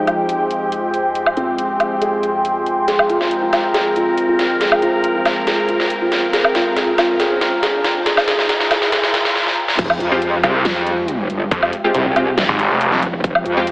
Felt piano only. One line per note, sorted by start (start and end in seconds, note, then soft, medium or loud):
0.00 0.25 D#4 medium
1.37 1.65 C4 loud
2.02 2.30 G#4 medium
2.88 3.07 G#4 medium
3.10 3.38 F4 medium
3.42 3.70 F4 medium
3.74 3.93 G#4 medium
3.96 4.24 F4 medium
4.29 4.57 F4 medium
4.61 4.80 G#4 medium
4.82 5.11 F4 medium
5.15 5.43 F4 medium
5.47 5.66 G#4 loud
5.69 5.97 F4 medium
6.01 6.29 F4 medium
6.33 6.52 G#4 medium
6.55 6.75 F4 loud
6.77 6.95 G#4 loud
6.98 7.18 F4 loud
7.20 7.39 G#4 loud
7.41 7.61 F4 medium
7.63 7.82 G#4 loud
7.84 8.04 F4 loud
8.06 8.25 G#4 loud
8.28 8.46 G#4 loud
8.49 8.68 G#4 loud
8.71 8.90 G#4 loud
8.92 9.11 G#4 loud
9.14 9.33 G#4 loud